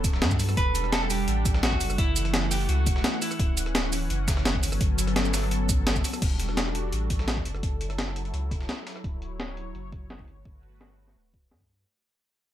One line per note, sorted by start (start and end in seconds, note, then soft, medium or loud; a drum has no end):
0.00 0.23 D1 medium
0.00 0.56 F#3 medium
0.00 0.56 B3 medium
0.00 0.54 C#4 medium
0.00 1.95 A4 medium
0.04 kick loud
0.04 closed hi-hat medium
0.04 shaker medium
0.13 snare medium
0.22 0.56 G2 medium
0.22 snare loud
0.22 closed hi-hat medium
0.31 kick medium
0.31 shaker soft
0.39 closed hi-hat medium
0.39 open hi-hat medium
0.39 shaker medium
0.49 cross-stick soft
0.49 shaker soft
0.57 1.26 E1 loud
0.57 1.97 G3 medium
0.57 1.97 D4 medium
0.57 0.92 B4 loud
0.57 4.59 F#5 medium
0.57 kick loud
0.57 closed hi-hat medium
0.75 closed hi-hat medium
0.75 shaker medium
0.84 cross-stick soft
0.92 1.02 A4 loud
0.92 snare loud
0.92 closed hi-hat medium
1.03 1.10 A4 medium
1.10 1.59 G4 loud
1.10 closed hi-hat medium
1.10 open hi-hat medium
1.10 shaker medium
1.28 1.79 A1 medium
1.28 closed hi-hat medium
1.45 kick loud
1.45 closed hi-hat medium
1.45 shaker medium
1.54 cross-stick soft
1.54 snare medium
1.63 1.99 F#4 loud
1.63 snare loud
1.63 closed hi-hat medium
1.72 kick medium
1.81 1.97 F#1 medium
1.81 closed hi-hat medium
1.81 open hi-hat medium
1.81 shaker medium
1.90 cross-stick soft
1.90 shaker soft
1.98 2.68 F#1 loud
1.98 3.38 E3 medium
1.98 3.38 A3 medium
1.98 2.53 E4 loud
1.98 kick loud
1.98 closed hi-hat medium
2.16 closed hi-hat medium
2.16 shaker medium
2.25 cross-stick soft
2.25 closed hi-hat soft
2.34 snare loud
2.34 closed hi-hat medium
2.51 2.69 G4 medium
2.51 closed hi-hat medium
2.51 open hi-hat medium
2.51 shaker medium
2.60 closed hi-hat soft
2.69 2.88 C#2 medium
2.69 3.23 F#4 loud
2.69 closed hi-hat medium
2.86 3.02 E1 medium
2.86 kick loud
2.86 closed hi-hat medium
2.86 shaker medium
2.96 snare medium
3.04 snare loud
3.04 closed hi-hat medium
3.22 3.88 E4 medium
3.22 closed hi-hat medium
3.22 open hi-hat medium
3.22 shaker medium
3.31 cross-stick soft
3.31 shaker soft
3.39 4.09 D1 loud
3.39 4.62 E3 medium
3.39 6.19 C#4 medium
3.39 kick loud
3.39 closed hi-hat medium
3.57 closed hi-hat loud
3.57 closed hi-hat medium
3.57 shaker medium
3.66 cross-stick soft
3.75 snare loud
3.75 closed hi-hat medium
3.93 closed hi-hat medium
3.93 open hi-hat medium
3.93 shaker medium
4.10 4.62 F#1 loud
4.10 closed hi-hat medium
4.28 kick loud
4.28 snare loud
4.28 closed hi-hat medium
4.28 closed hi-hat loud
4.28 shaker medium
4.37 cross-stick soft
4.37 snare medium
4.45 snare loud
4.45 closed hi-hat medium
4.54 kick medium
4.63 4.79 G1 medium
4.63 6.20 F#3 medium
4.63 6.20 B3 medium
4.63 6.20 A4 medium
4.63 closed hi-hat medium
4.63 open hi-hat medium
4.63 shaker medium
4.72 cross-stick soft
4.72 shaker soft
4.81 5.71 G1 loud
4.81 kick loud
4.81 closed hi-hat medium
4.98 closed hi-hat loud
4.98 closed hi-hat medium
4.98 shaker medium
5.07 cross-stick soft
5.07 closed hi-hat soft
5.16 snare loud
5.16 closed hi-hat medium
5.25 shaker soft
5.34 snare loud
5.34 closed hi-hat medium
5.34 open hi-hat medium
5.34 shaker medium
5.51 closed hi-hat medium
5.69 5.79 B1 medium
5.69 kick loud
5.69 closed hi-hat loud
5.69 closed hi-hat medium
5.69 shaker medium
5.78 6.03 G1 medium
5.87 snare loud
5.87 closed hi-hat medium
5.96 kick medium
5.96 shaker soft
6.04 closed hi-hat medium
6.04 open hi-hat medium
6.04 shaker medium
6.13 cross-stick soft
6.13 shaker soft
6.22 6.91 E1 loud
6.22 7.62 G3 medium
6.22 7.62 D4 medium
6.22 7.62 F#4 medium
6.22 9.02 A4 medium
6.22 kick loud
6.22 closed hi-hat medium
6.22 crash medium
6.39 closed hi-hat medium
6.49 cross-stick soft
6.57 snare loud
6.57 closed hi-hat medium
6.75 closed hi-hat medium
6.92 7.44 A1 medium
6.92 closed hi-hat medium
7.10 kick loud
7.10 closed hi-hat loud
7.10 closed hi-hat medium
7.19 cross-stick soft
7.19 snare medium
7.28 snare loud
7.28 closed hi-hat medium
7.37 kick medium
7.45 7.61 F#1 medium
7.45 closed hi-hat medium
7.55 cross-stick soft
7.63 8.32 F#1 loud
7.63 9.03 F#3 medium
7.63 10.25 E4 medium
7.63 kick loud
7.63 closed hi-hat medium
7.81 closed hi-hat medium
7.90 cross-stick soft
7.90 closed hi-hat soft
7.98 snare loud
7.98 closed hi-hat medium
8.16 closed hi-hat medium
8.25 closed hi-hat soft
8.34 8.53 C#2 medium
8.34 closed hi-hat medium
8.51 8.67 E1 medium
8.51 kick loud
8.51 closed hi-hat medium
8.61 snare medium
8.69 snare loud
8.69 closed hi-hat medium
8.87 snare loud
8.87 closed hi-hat medium
8.96 cross-stick soft
9.04 9.73 D1 loud
9.04 10.27 F#3 medium
9.04 11.84 C#5 medium
9.04 kick loud
9.04 closed hi-hat medium
9.22 closed hi-hat medium
9.40 snare loud
9.40 closed hi-hat medium
9.57 closed hi-hat medium
9.75 10.26 F#1 medium
9.75 closed hi-hat medium
9.92 kick loud
9.92 closed hi-hat medium
10.10 snare loud
10.10 closed hi-hat medium
10.19 kick medium
10.28 10.44 G1 medium
10.28 11.85 A3 medium
10.28 11.85 F#4 medium
10.28 11.85 B4 medium
10.28 closed hi-hat medium
10.45 11.15 G1 loud
10.45 kick loud
10.45 closed hi-hat medium
10.63 closed hi-hat medium
10.81 snare loud
10.81 closed hi-hat medium
10.98 closed hi-hat medium
11.07 snare soft
11.16 11.53 D1 medium
11.16 closed hi-hat medium
11.34 kick loud
11.34 closed hi-hat medium
11.51 11.85 G2 medium
11.51 snare loud
11.51 closed hi-hat medium
11.60 kick medium